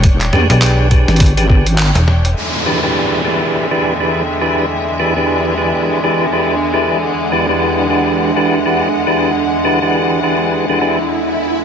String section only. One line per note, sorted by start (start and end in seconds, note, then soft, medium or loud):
0.00 2.33 E3 medium
0.00 2.34 D4 medium
0.00 2.36 C#5 medium
0.00 2.33 G5 medium
2.37 11.64 E2 medium
2.37 11.64 D3 medium
2.37 11.64 G#3 medium
2.37 6.99 E5 medium
7.03 11.64 F#5 medium